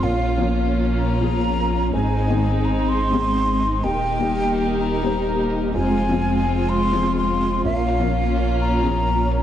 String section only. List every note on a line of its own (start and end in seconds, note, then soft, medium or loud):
0.00 1.91 A#3 medium
0.00 1.91 C#4 medium
0.00 1.89 F4 medium
1.93 3.82 G#3 medium
1.93 3.82 C4 medium
1.93 3.82 D#4 medium
3.84 5.72 D#3 medium
3.84 5.72 D#4 medium
3.84 5.72 G4 medium
3.84 5.72 A#4 medium
5.74 7.63 G#3 medium
5.74 7.63 C4 medium
5.74 7.63 F4 medium
7.65 9.43 A#3 medium
7.65 9.43 C#4 medium
7.65 9.43 F4 medium